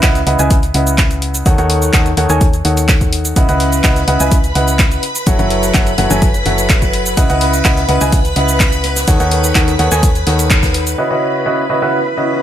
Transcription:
0.02 C#2 C#3 E4 B4 D#5 F#5, kick, snare, clap, closed hi-hat, shaker
0.15 snare, closed hi-hat, shaker
0.27 C#2 C#3 E4 B4 D#5 F#5, closed hi-hat, open hi-hat
0.39 C#2 C#3 E4 B4 D#5 G#5, closed hi-hat, shaker
0.50 kick, closed hi-hat, shaker
0.63 closed hi-hat, shaker
0.74 C#2 C#3 E4 B4 D#5 F#5, closed hi-hat, open hi-hat
0.87 closed hi-hat, shaker
0.98 kick, snare, clap, closed hi-hat, shaker
1.11 closed hi-hat, shaker
1.22 closed hi-hat, open hi-hat
1.34 closed hi-hat, shaker
1.46 D#2 D#3 D#4 A4 C#5 F#5, kick, closed hi-hat, shaker
1.58 D#2 D#3 D#4 A4 C#5 F#5, closed hi-hat, shaker
1.69 closed hi-hat, open hi-hat
1.82 closed hi-hat, shaker
1.93 D#2 D#3 D#4 A4 C#5 F#5, kick, snare, clap, closed hi-hat, shaker
2.06 closed hi-hat, shaker
2.17 D#2 D#3 D#4 A4 C#5 F#5, closed hi-hat, open hi-hat
2.30 D#2 D#3 D#4 A4 C#5 G#5, closed hi-hat, shaker
2.41 kick, closed hi-hat, shaker
2.53 closed hi-hat, shaker
2.65 D#2 D#3 D#4 A4 C#5 F#5, closed hi-hat, open hi-hat
2.77 open hi-hat, shaker
2.88 kick, snare, clap, closed hi-hat, shaker
3.01 kick, closed hi-hat, shaker
3.13 closed hi-hat, open hi-hat
3.25 closed hi-hat, shaker
3.36 C#2 C#3 E4 B4 D#5 F#5 B5, kick, closed hi-hat, shaker
3.49 C#2 C#3 E4 B4 D#5 F#5, closed hi-hat, shaker
3.60 snare, closed hi-hat, open hi-hat
3.72 closed hi-hat, shaker
3.83 C#2 C#3 E4 B4 D#5 F#5, kick, snare, clap, closed hi-hat, shaker
3.96 snare, closed hi-hat, shaker
4.07 C#2 C#3 E4 B4 D#5 F#5, closed hi-hat, open hi-hat
4.20 C#2 C#3 E4 B4 D#5 G#5, closed hi-hat, shaker
4.32 kick, closed hi-hat, shaker
4.44 closed hi-hat, shaker
4.55 C#2 C#3 E4 B4 D#5 F#5, closed hi-hat, open hi-hat
4.68 closed hi-hat, shaker
4.79 kick, snare, clap, closed hi-hat, shaker
4.92 closed hi-hat, shaker
5.03 closed hi-hat, open hi-hat
5.15 closed hi-hat, shaker
5.26 F#1 F#3 E4 A4 C#5 F#5, kick, closed hi-hat, shaker
5.39 F#1 F#3 E4 A4 C#5 F#5, closed hi-hat, shaker
5.50 closed hi-hat, open hi-hat
5.63 closed hi-hat, shaker
5.74 F#1 F#3 E4 A4 C#5 F#5, kick, snare, clap, closed hi-hat, shaker
5.87 closed hi-hat, shaker
5.98 F#1 F#3 E4 A4 C#5 F#5, closed hi-hat, open hi-hat
6.10 F#1 F#3 E4 A4 C#5 G#5, closed hi-hat, shaker
6.22 kick, closed hi-hat, shaker
6.34 closed hi-hat, shaker
6.46 F#1 F#3 E4 A4 C#5 F#5, closed hi-hat, open hi-hat
6.58 open hi-hat, shaker
6.69 kick, snare, clap, closed hi-hat, shaker
6.82 kick, closed hi-hat, shaker
6.93 closed hi-hat, open hi-hat
7.06 closed hi-hat, shaker
7.17 C#2 C#3 E4 B4 D#5 F#5, kick, closed hi-hat, shaker
7.30 C#2 C#3 E4 B4 D#5 F#5, closed hi-hat, shaker
7.41 snare, closed hi-hat, open hi-hat
7.54 closed hi-hat, shaker
7.65 C#2 C#3 E4 B4 D#5 F#5, kick, snare, clap, closed hi-hat, shaker
7.77 snare, closed hi-hat, shaker
7.89 C#2 C#3 E4 B4 D#5 F#5, closed hi-hat, open hi-hat
8.01 C#2 C#3 E4 B4 D#5 G#5, closed hi-hat, shaker
8.12 kick, closed hi-hat, shaker
8.25 closed hi-hat, shaker
8.36 C#2 C#3 E4 B4 D#5 F#5, closed hi-hat, open hi-hat
8.49 closed hi-hat, shaker
8.60 kick, snare, clap, closed hi-hat, shaker
8.72 closed hi-hat, shaker
8.84 snare, closed hi-hat, open hi-hat
8.96 snare, closed hi-hat, shaker
9.07 D#2 D#3 D#4 A4 C#5 F#5, kick, snare, closed hi-hat, shaker
9.20 D#2 D#3 D#4 A4 C#5 F#5, closed hi-hat, shaker
9.31 closed hi-hat, open hi-hat
9.44 closed hi-hat, shaker
9.55 D#2 D#3 D#4 A4 C#5 F#5, kick, snare, clap, closed hi-hat, shaker
9.68 closed hi-hat, shaker
9.79 D#2 D#3 D#4 A4 C#5 F#5, closed hi-hat, open hi-hat
9.91 D#2 D#3 D#4 A4 C#5 G#5, closed hi-hat, shaker
10.03 kick, closed hi-hat, shaker
10.15 closed hi-hat, shaker
10.27 D#2 D#3 D#4 A4 C#5 F#5, snare, closed hi-hat, open hi-hat
10.39 closed hi-hat, open hi-hat, shaker
10.50 kick, clap, closed hi-hat, shaker
10.63 kick, snare, closed hi-hat, shaker
10.74 closed hi-hat, open hi-hat
10.86 closed hi-hat, shaker
10.98 C#3 C#4 E4 F#4 B4 D#5 B5
11.11 C#3 C#4 E4 F#4 B4 D#5
11.15 B4
11.41 C#5 D#6
11.46 C#3 C#4 E4 F#4 B4 D#5
11.58 F#5
11.70 C#3 C#4 E4 F#4 B4 D#5
11.82 C#3 C#4 E4 F#4 B4 E5
12.17 C#3 C#4 E4 F#4 B4 D#5

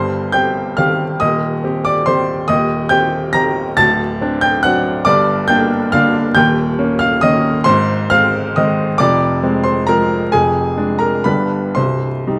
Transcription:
Already playing: G1 G2 C5 C6
0.32 C4 G4 G5 G6
0.77 D#3 C4 G4 F5 F6
1.20 D#1 D#2 D#5 D#6
1.64 C4 G4
1.85 D5 D6
2.06 D#3 C4 G4 C5 C6
2.48 D#1 D#2 D#5 D#6
2.89 C4 G4 G5 G6
3.33 D#3 C4 G4 A#5 A#6
3.77 D1 D2 A5 A6
4.21 C4 D4
4.41 G5 G6
4.63 F#3 C4 D4 F#5 F#6
5.05 G1 G2 D5 D6
5.48 A#3 D4 G5 G6
5.92 D3 A#3 D4 F5 F6
6.35 D#1 D#2 G5 G6
6.79 A#3 C#4
6.99 F5 F6
7.21 D#3 A#3 C#4 D#5 D#6
7.64 G#1 G#2 C5 C6
8.10 G#3 C4 F5 F6
8.56 D#3 G#3 C4 D#5 D#6
8.98 F1 F2 D5 D6
9.43 G#3 C4
9.64 C5 C6
9.87 F3 G#3 C4 A#4 A#5
10.32 F1 F2 G#4 G#5
10.77 G#3 D4
10.99 A#4 A#5
11.24 G1 G2 D3 G3 D4 B4 B5
11.75 C1 C2 C5 C6
12.27 G3 D#4

